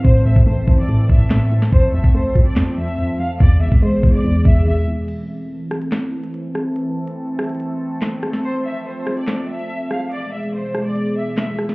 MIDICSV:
0, 0, Header, 1, 5, 480
1, 0, Start_track
1, 0, Key_signature, 0, "minor"
1, 0, Tempo, 419580
1, 54, Time_signature, 4, 2, 24, 8
1, 13441, End_track
2, 0, Start_track
2, 0, Title_t, "Violin section"
2, 0, Program_c, 0, 48
2, 53, Note_on_c, 0, 72, 112
2, 262, Note_off_c, 0, 72, 0
2, 293, Note_on_c, 0, 76, 86
2, 502, Note_off_c, 0, 76, 0
2, 536, Note_on_c, 0, 72, 83
2, 873, Note_off_c, 0, 72, 0
2, 895, Note_on_c, 0, 74, 81
2, 1233, Note_off_c, 0, 74, 0
2, 1255, Note_on_c, 0, 76, 85
2, 1463, Note_off_c, 0, 76, 0
2, 1496, Note_on_c, 0, 76, 93
2, 1703, Note_off_c, 0, 76, 0
2, 1976, Note_on_c, 0, 72, 100
2, 2183, Note_off_c, 0, 72, 0
2, 2213, Note_on_c, 0, 76, 91
2, 2422, Note_off_c, 0, 76, 0
2, 2456, Note_on_c, 0, 72, 86
2, 2793, Note_off_c, 0, 72, 0
2, 2815, Note_on_c, 0, 74, 71
2, 3153, Note_off_c, 0, 74, 0
2, 3173, Note_on_c, 0, 76, 92
2, 3625, Note_off_c, 0, 76, 0
2, 3654, Note_on_c, 0, 77, 84
2, 3862, Note_off_c, 0, 77, 0
2, 3893, Note_on_c, 0, 74, 106
2, 4102, Note_off_c, 0, 74, 0
2, 4133, Note_on_c, 0, 76, 78
2, 4342, Note_off_c, 0, 76, 0
2, 4374, Note_on_c, 0, 72, 81
2, 4713, Note_off_c, 0, 72, 0
2, 4733, Note_on_c, 0, 74, 83
2, 5072, Note_off_c, 0, 74, 0
2, 5093, Note_on_c, 0, 76, 87
2, 5302, Note_off_c, 0, 76, 0
2, 5336, Note_on_c, 0, 76, 89
2, 5543, Note_off_c, 0, 76, 0
2, 9656, Note_on_c, 0, 72, 108
2, 9863, Note_off_c, 0, 72, 0
2, 9893, Note_on_c, 0, 76, 91
2, 10102, Note_off_c, 0, 76, 0
2, 10135, Note_on_c, 0, 72, 84
2, 10473, Note_off_c, 0, 72, 0
2, 10496, Note_on_c, 0, 74, 74
2, 10833, Note_off_c, 0, 74, 0
2, 10853, Note_on_c, 0, 76, 93
2, 11304, Note_off_c, 0, 76, 0
2, 11334, Note_on_c, 0, 77, 84
2, 11542, Note_off_c, 0, 77, 0
2, 11573, Note_on_c, 0, 74, 106
2, 11782, Note_off_c, 0, 74, 0
2, 11813, Note_on_c, 0, 76, 78
2, 12022, Note_off_c, 0, 76, 0
2, 12054, Note_on_c, 0, 72, 82
2, 12392, Note_off_c, 0, 72, 0
2, 12414, Note_on_c, 0, 74, 82
2, 12752, Note_off_c, 0, 74, 0
2, 12773, Note_on_c, 0, 76, 87
2, 12982, Note_off_c, 0, 76, 0
2, 13016, Note_on_c, 0, 76, 89
2, 13223, Note_off_c, 0, 76, 0
2, 13441, End_track
3, 0, Start_track
3, 0, Title_t, "Analog synth pad"
3, 0, Program_c, 1, 89
3, 0, Note_on_c, 1, 52, 78
3, 0, Note_on_c, 1, 57, 70
3, 0, Note_on_c, 1, 60, 73
3, 0, Note_on_c, 1, 69, 85
3, 1935, Note_off_c, 1, 52, 0
3, 1935, Note_off_c, 1, 60, 0
3, 1974, Note_on_c, 1, 53, 80
3, 1974, Note_on_c, 1, 60, 74
3, 3848, Note_off_c, 1, 57, 0
3, 3848, Note_off_c, 1, 69, 0
3, 3875, Note_off_c, 1, 53, 0
3, 3875, Note_off_c, 1, 60, 0
3, 3894, Note_on_c, 1, 47, 73
3, 3894, Note_on_c, 1, 52, 80
3, 3894, Note_on_c, 1, 56, 75
3, 3894, Note_on_c, 1, 68, 86
3, 5795, Note_off_c, 1, 47, 0
3, 5795, Note_off_c, 1, 52, 0
3, 5795, Note_off_c, 1, 56, 0
3, 5795, Note_off_c, 1, 68, 0
3, 5814, Note_on_c, 1, 52, 80
3, 5814, Note_on_c, 1, 57, 73
3, 5814, Note_on_c, 1, 60, 75
3, 5814, Note_on_c, 1, 69, 88
3, 9616, Note_off_c, 1, 52, 0
3, 9654, Note_on_c, 1, 53, 83
3, 11528, Note_off_c, 1, 57, 0
3, 11528, Note_off_c, 1, 60, 0
3, 11528, Note_off_c, 1, 69, 0
3, 11555, Note_off_c, 1, 53, 0
3, 11574, Note_on_c, 1, 47, 73
3, 11574, Note_on_c, 1, 52, 83
3, 11574, Note_on_c, 1, 56, 71
3, 11574, Note_on_c, 1, 68, 91
3, 13441, Note_off_c, 1, 47, 0
3, 13441, Note_off_c, 1, 52, 0
3, 13441, Note_off_c, 1, 56, 0
3, 13441, Note_off_c, 1, 68, 0
3, 13441, End_track
4, 0, Start_track
4, 0, Title_t, "Synth pluck"
4, 0, Program_c, 2, 84
4, 53, Note_on_c, 2, 45, 95
4, 280, Note_off_c, 2, 45, 0
4, 294, Note_on_c, 2, 45, 80
4, 533, Note_on_c, 2, 57, 89
4, 774, Note_on_c, 2, 52, 87
4, 1000, Note_off_c, 2, 45, 0
4, 1014, Note_on_c, 2, 45, 92
4, 1241, Note_off_c, 2, 45, 0
4, 1254, Note_on_c, 2, 45, 84
4, 1481, Note_off_c, 2, 45, 0
4, 1494, Note_on_c, 2, 45, 79
4, 1720, Note_off_c, 2, 45, 0
4, 1734, Note_off_c, 2, 57, 0
4, 1734, Note_on_c, 2, 45, 80
4, 1973, Note_on_c, 2, 41, 100
4, 1974, Note_off_c, 2, 45, 0
4, 1974, Note_off_c, 2, 52, 0
4, 2200, Note_off_c, 2, 41, 0
4, 2214, Note_on_c, 2, 41, 81
4, 2454, Note_on_c, 2, 57, 91
4, 2694, Note_on_c, 2, 53, 83
4, 2921, Note_off_c, 2, 41, 0
4, 2934, Note_on_c, 2, 41, 95
4, 3160, Note_off_c, 2, 41, 0
4, 3174, Note_on_c, 2, 41, 74
4, 3400, Note_off_c, 2, 41, 0
4, 3414, Note_on_c, 2, 41, 84
4, 3640, Note_off_c, 2, 41, 0
4, 3654, Note_off_c, 2, 57, 0
4, 3654, Note_on_c, 2, 41, 76
4, 3893, Note_on_c, 2, 40, 98
4, 3894, Note_off_c, 2, 41, 0
4, 3894, Note_off_c, 2, 53, 0
4, 4120, Note_off_c, 2, 40, 0
4, 4134, Note_on_c, 2, 40, 83
4, 4374, Note_on_c, 2, 56, 87
4, 4613, Note_on_c, 2, 52, 80
4, 4840, Note_off_c, 2, 40, 0
4, 4854, Note_on_c, 2, 40, 91
4, 5081, Note_off_c, 2, 40, 0
4, 5094, Note_on_c, 2, 40, 74
4, 5320, Note_off_c, 2, 40, 0
4, 5334, Note_on_c, 2, 40, 82
4, 5560, Note_off_c, 2, 40, 0
4, 5574, Note_off_c, 2, 56, 0
4, 5574, Note_on_c, 2, 40, 74
4, 5813, Note_off_c, 2, 52, 0
4, 5814, Note_off_c, 2, 40, 0
4, 13441, End_track
5, 0, Start_track
5, 0, Title_t, "Drums"
5, 53, Note_on_c, 9, 36, 111
5, 54, Note_on_c, 9, 42, 90
5, 168, Note_off_c, 9, 36, 0
5, 168, Note_off_c, 9, 42, 0
5, 414, Note_on_c, 9, 36, 97
5, 414, Note_on_c, 9, 42, 80
5, 528, Note_off_c, 9, 36, 0
5, 528, Note_off_c, 9, 42, 0
5, 774, Note_on_c, 9, 36, 92
5, 774, Note_on_c, 9, 42, 68
5, 834, Note_off_c, 9, 42, 0
5, 834, Note_on_c, 9, 42, 60
5, 888, Note_off_c, 9, 36, 0
5, 893, Note_off_c, 9, 42, 0
5, 893, Note_on_c, 9, 42, 51
5, 953, Note_off_c, 9, 42, 0
5, 953, Note_on_c, 9, 42, 41
5, 1014, Note_off_c, 9, 42, 0
5, 1014, Note_on_c, 9, 42, 80
5, 1128, Note_off_c, 9, 42, 0
5, 1253, Note_on_c, 9, 36, 92
5, 1367, Note_off_c, 9, 36, 0
5, 1492, Note_on_c, 9, 39, 84
5, 1493, Note_on_c, 9, 42, 76
5, 1494, Note_on_c, 9, 38, 112
5, 1607, Note_off_c, 9, 39, 0
5, 1608, Note_off_c, 9, 38, 0
5, 1608, Note_off_c, 9, 42, 0
5, 1734, Note_on_c, 9, 42, 74
5, 1848, Note_off_c, 9, 42, 0
5, 1854, Note_on_c, 9, 38, 72
5, 1854, Note_on_c, 9, 42, 79
5, 1968, Note_off_c, 9, 42, 0
5, 1969, Note_off_c, 9, 38, 0
5, 1974, Note_on_c, 9, 36, 112
5, 1974, Note_on_c, 9, 42, 95
5, 2088, Note_off_c, 9, 36, 0
5, 2088, Note_off_c, 9, 42, 0
5, 2334, Note_on_c, 9, 36, 98
5, 2448, Note_off_c, 9, 36, 0
5, 2694, Note_on_c, 9, 36, 91
5, 2694, Note_on_c, 9, 42, 74
5, 2808, Note_off_c, 9, 36, 0
5, 2808, Note_off_c, 9, 42, 0
5, 2814, Note_on_c, 9, 42, 72
5, 2929, Note_off_c, 9, 42, 0
5, 2933, Note_on_c, 9, 39, 94
5, 2934, Note_on_c, 9, 38, 117
5, 2934, Note_on_c, 9, 42, 80
5, 3047, Note_off_c, 9, 39, 0
5, 3048, Note_off_c, 9, 38, 0
5, 3049, Note_off_c, 9, 42, 0
5, 3294, Note_on_c, 9, 42, 80
5, 3408, Note_off_c, 9, 42, 0
5, 3414, Note_on_c, 9, 42, 70
5, 3528, Note_off_c, 9, 42, 0
5, 3894, Note_on_c, 9, 36, 111
5, 3894, Note_on_c, 9, 42, 91
5, 4008, Note_off_c, 9, 36, 0
5, 4008, Note_off_c, 9, 42, 0
5, 4254, Note_on_c, 9, 36, 99
5, 4254, Note_on_c, 9, 42, 82
5, 4368, Note_off_c, 9, 36, 0
5, 4368, Note_off_c, 9, 42, 0
5, 4614, Note_on_c, 9, 36, 92
5, 4614, Note_on_c, 9, 42, 68
5, 4728, Note_off_c, 9, 36, 0
5, 4728, Note_off_c, 9, 42, 0
5, 4854, Note_on_c, 9, 42, 77
5, 4969, Note_off_c, 9, 42, 0
5, 5093, Note_on_c, 9, 36, 94
5, 5208, Note_off_c, 9, 36, 0
5, 5814, Note_on_c, 9, 42, 95
5, 5814, Note_on_c, 9, 49, 94
5, 5928, Note_off_c, 9, 42, 0
5, 5928, Note_off_c, 9, 49, 0
5, 6533, Note_on_c, 9, 37, 94
5, 6534, Note_on_c, 9, 42, 76
5, 6648, Note_off_c, 9, 37, 0
5, 6648, Note_off_c, 9, 42, 0
5, 6654, Note_on_c, 9, 42, 76
5, 6768, Note_off_c, 9, 42, 0
5, 6772, Note_on_c, 9, 39, 95
5, 6774, Note_on_c, 9, 38, 119
5, 6774, Note_on_c, 9, 42, 82
5, 6887, Note_off_c, 9, 39, 0
5, 6888, Note_off_c, 9, 38, 0
5, 6888, Note_off_c, 9, 42, 0
5, 7134, Note_on_c, 9, 42, 83
5, 7248, Note_off_c, 9, 42, 0
5, 7254, Note_on_c, 9, 42, 75
5, 7369, Note_off_c, 9, 42, 0
5, 7494, Note_on_c, 9, 37, 94
5, 7609, Note_off_c, 9, 37, 0
5, 7734, Note_on_c, 9, 42, 93
5, 7848, Note_off_c, 9, 42, 0
5, 8094, Note_on_c, 9, 42, 79
5, 8208, Note_off_c, 9, 42, 0
5, 8453, Note_on_c, 9, 37, 99
5, 8454, Note_on_c, 9, 42, 73
5, 8513, Note_off_c, 9, 42, 0
5, 8513, Note_on_c, 9, 42, 63
5, 8568, Note_off_c, 9, 37, 0
5, 8574, Note_off_c, 9, 42, 0
5, 8574, Note_on_c, 9, 42, 53
5, 8634, Note_off_c, 9, 42, 0
5, 8634, Note_on_c, 9, 42, 43
5, 8694, Note_off_c, 9, 42, 0
5, 8694, Note_on_c, 9, 42, 80
5, 8808, Note_off_c, 9, 42, 0
5, 9172, Note_on_c, 9, 39, 87
5, 9174, Note_on_c, 9, 38, 111
5, 9174, Note_on_c, 9, 42, 79
5, 9287, Note_off_c, 9, 39, 0
5, 9288, Note_off_c, 9, 38, 0
5, 9288, Note_off_c, 9, 42, 0
5, 9414, Note_on_c, 9, 37, 97
5, 9414, Note_on_c, 9, 42, 78
5, 9528, Note_off_c, 9, 37, 0
5, 9528, Note_off_c, 9, 42, 0
5, 9534, Note_on_c, 9, 38, 72
5, 9534, Note_on_c, 9, 42, 80
5, 9648, Note_off_c, 9, 38, 0
5, 9648, Note_off_c, 9, 42, 0
5, 9653, Note_on_c, 9, 42, 94
5, 9768, Note_off_c, 9, 42, 0
5, 10373, Note_on_c, 9, 37, 96
5, 10374, Note_on_c, 9, 42, 76
5, 10488, Note_off_c, 9, 37, 0
5, 10488, Note_off_c, 9, 42, 0
5, 10494, Note_on_c, 9, 42, 73
5, 10608, Note_off_c, 9, 42, 0
5, 10612, Note_on_c, 9, 39, 94
5, 10613, Note_on_c, 9, 38, 115
5, 10614, Note_on_c, 9, 42, 78
5, 10727, Note_off_c, 9, 39, 0
5, 10728, Note_off_c, 9, 38, 0
5, 10728, Note_off_c, 9, 42, 0
5, 10974, Note_on_c, 9, 42, 84
5, 11089, Note_off_c, 9, 42, 0
5, 11094, Note_on_c, 9, 42, 69
5, 11209, Note_off_c, 9, 42, 0
5, 11334, Note_on_c, 9, 37, 94
5, 11448, Note_off_c, 9, 37, 0
5, 11574, Note_on_c, 9, 42, 92
5, 11688, Note_off_c, 9, 42, 0
5, 11934, Note_on_c, 9, 42, 82
5, 12048, Note_off_c, 9, 42, 0
5, 12294, Note_on_c, 9, 37, 93
5, 12294, Note_on_c, 9, 42, 70
5, 12408, Note_off_c, 9, 37, 0
5, 12409, Note_off_c, 9, 42, 0
5, 12534, Note_on_c, 9, 42, 76
5, 12648, Note_off_c, 9, 42, 0
5, 13013, Note_on_c, 9, 39, 90
5, 13014, Note_on_c, 9, 38, 112
5, 13014, Note_on_c, 9, 42, 76
5, 13127, Note_off_c, 9, 39, 0
5, 13128, Note_off_c, 9, 38, 0
5, 13128, Note_off_c, 9, 42, 0
5, 13254, Note_on_c, 9, 37, 95
5, 13254, Note_on_c, 9, 42, 79
5, 13368, Note_off_c, 9, 37, 0
5, 13368, Note_off_c, 9, 42, 0
5, 13374, Note_on_c, 9, 38, 70
5, 13374, Note_on_c, 9, 42, 77
5, 13441, Note_off_c, 9, 38, 0
5, 13441, Note_off_c, 9, 42, 0
5, 13441, End_track
0, 0, End_of_file